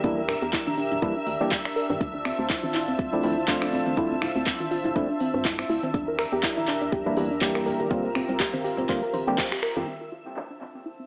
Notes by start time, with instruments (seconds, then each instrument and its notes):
Already playing: analog synth pad D4 G4 A#4 E5 A#5, string machine E5 E6
0.04 fm bass E2, synth stab E3 G3 A#3 D4 E4, synth arpeggio sound D4, kick, closed hi-hat, tambourine
0.18 synth arpeggio sound A#4
0.28 synth arpeggio sound A#4, finger snap, open hi-hat, tambourine, low conga
0.42 fm bass E2, synth arpeggio sound G4, closed hi-hat, tambourine
0.53 synth arpeggio sound E4, kick, clap, closed hi-hat, tambourine
0.67 fm bass A#1, synth arpeggio sound D4, closed hi-hat, high conga
0.78 synth arpeggio sound D4, open hi-hat, tambourine
0.91 fm bass E2, synth arpeggio sound D4, closed hi-hat, tambourine, low conga
1.02 synth stab E3 G3 A#3 D4 E4, synth arpeggio sound G4, kick, closed hi-hat, tambourine
1.16 synth arpeggio sound D4, tambourine
1.27 fm bass D2, synth arpeggio sound E5, open hi-hat, tambourine, high conga
1.40 synth stab E3 G3 A#3 D4 G4, synth arpeggio sound D5, tambourine
1.51 synth arpeggio sound D4, kick, clap, closed hi-hat, tambourine
1.65 synth arpeggio sound D5, finger snap, closed hi-hat
1.76 synth arpeggio sound A#4, open hi-hat, tambourine
1.90 fm bass G2, synth arpeggio sound D4, closed hi-hat, tambourine, high conga
2.00 fm bass D2, synth arpeggio sound D4, analog synth pad F4 C5 E5 A5, kick, closed hi-hat, tambourine
2.15 synth arpeggio sound D4
2.25 synth arpeggio sound C4, finger snap, open hi-hat, tambourine
2.39 fm bass D2, synth arpeggio sound C4, tambourine
2.50 synth arpeggio sound E4, kick, clap, closed hi-hat, tambourine
2.63 fm bass A1, synth arpeggio sound C4, closed hi-hat, high conga
2.74 synth arpeggio sound E4, clap, open hi-hat, tambourine
2.88 fm bass D2, synth arpeggio sound C4, closed hi-hat, tambourine
2.99 fm bass D2, synth arpeggio sound C4, kick, closed hi-hat, tambourine
3.12 synth stab F3 A3 C4 D4 E4, synth arpeggio sound F4, low conga
3.23 fm bass D2, synth stab F3 A3 C4 D4 E4, synth arpeggio sound F4, open hi-hat, tambourine, high conga
3.37 synth arpeggio sound E4, tambourine
3.48 synth stab F3 A3 C4 D4 F4, synth arpeggio sound D4, kick, clap, closed hi-hat, tambourine
3.62 synth arpeggio sound D4, finger snap, closed hi-hat
3.73 synth arpeggio sound C4, open hi-hat, tambourine, low conga
3.86 synth arpeggio sound C4, closed hi-hat, tambourine, high conga
3.97 fm bass D2, synth stab F3 A3 C4 D4 E4, synth arpeggio sound E4, kick, closed hi-hat, tambourine
4.11 synth arpeggio sound C4
4.22 synth arpeggio sound E4, finger snap, open hi-hat, tambourine, low conga
4.36 fm bass D2, synth arpeggio sound C4, closed hi-hat, tambourine
4.46 synth arpeggio sound C4, kick, clap, closed hi-hat, tambourine
4.60 fm bass A1, synth arpeggio sound F4, closed hi-hat, high conga
4.71 synth arpeggio sound F4, open hi-hat, tambourine
4.84 fm bass D2, synth arpeggio sound E4, closed hi-hat, tambourine, low conga
4.95 synth stab F3 A3 C4 D4 E4, synth arpeggio sound D4, kick, closed hi-hat, tambourine
5.09 synth arpeggio sound D4, tambourine
5.20 synth arpeggio sound C4, open hi-hat, tambourine, high conga
5.34 fm bass G2, synth arpeggio sound C4, tambourine
5.45 synth arpeggio sound E4, kick, clap, closed hi-hat, tambourine
5.59 synth arpeggio sound C4, finger snap, closed hi-hat
5.69 fm bass D2, synth arpeggio sound E4, open hi-hat, tambourine
5.83 synth arpeggio sound C4, closed hi-hat, tambourine, high conga
5.94 fm bass E2, synth arpeggio sound D4, analog synth pad D4 G4 A#4 E5 A#5, kick, closed hi-hat, tambourine
6.08 synth arpeggio sound A#4
6.19 synth arpeggio sound A#4, finger snap, open hi-hat, tambourine
6.32 fm bass E2, synth arpeggio sound G4, tambourine
6.43 synth arpeggio sound E4, kick, clap, closed hi-hat, tambourine
6.57 fm bass A#1, synth arpeggio sound E4, closed hi-hat, high conga
6.68 synth arpeggio sound D4, clap, open hi-hat, tambourine
6.82 fm bass E2, synth arpeggio sound D4, closed hi-hat, tambourine
6.92 fm bass E2, synth arpeggio sound G4, kick, closed hi-hat, tambourine
7.06 synth stab E3 G3 A#3 D4 E4, synth arpeggio sound D4, low conga
7.17 fm bass E2, synth stab E3 G3 A#3 D4 E4, synth arpeggio sound G4, open hi-hat, tambourine, high conga
7.31 synth arpeggio sound D4, tambourine
7.41 synth stab E3 G3 A#3 D4 G4, synth arpeggio sound D4, kick, clap, closed hi-hat, tambourine
7.55 synth arpeggio sound A#4, finger snap, closed hi-hat
7.66 synth arpeggio sound A#4, open hi-hat, tambourine, low conga
7.80 synth arpeggio sound G4, closed hi-hat, tambourine, high conga
7.90 fm bass C2, synth stab D3 G3 A#3 C4 F4, analog synth pad C4 F4, synth arpeggio sound F4, kick, closed hi-hat, tambourine
8.05 synth arpeggio sound F4, tambourine
8.15 synth arpeggio sound C4, finger snap, open hi-hat, tambourine, low conga
8.29 fm bass C2, synth arpeggio sound C4, closed hi-hat, tambourine
8.40 synth arpeggio sound G4, kick, clap, closed hi-hat, tambourine
8.54 fm bass G1, synth arpeggio sound C4, closed hi-hat, tambourine, high conga
8.64 synth arpeggio sound G4, open hi-hat, tambourine
8.77 fm bass C2, synth arpeggio sound C4, closed hi-hat, tambourine, low conga
8.89 synth stab D3 G3 A#3 C4 F4, synth arpeggio sound C4, kick, clap, closed hi-hat, tambourine
9.03 synth arpeggio sound A#4, closed hi-hat
9.14 fm bass A#1, synth arpeggio sound C5, open hi-hat, tambourine, high conga
9.27 synth stab D3 G3 A#3 C4 G4, synth arpeggio sound G4, closed hi-hat, tambourine
9.38 synth arpeggio sound C5, kick, clap, closed hi-hat, tambourine
9.52 synth arpeggio sound G4, finger snap, closed hi-hat, tambourine
9.63 synth arpeggio sound A#4, finger snap, open hi-hat, tambourine
9.77 fm bass F2, synth arpeggio sound F4, closed hi-hat, tambourine, high conga
9.87 synth arpeggio sound C4, analog synth pad D4 F4 C5 E5 A5
10.01 synth arpeggio sound F4
10.12 synth arpeggio sound F4
10.26 synth arpeggio sound E4
10.36 synth arpeggio sound D4, clap
10.50 synth arpeggio sound D4
10.61 synth arpeggio sound C4, clap
10.75 synth arpeggio sound C4
10.86 synth arpeggio sound E4
10.99 synth arpeggio sound C4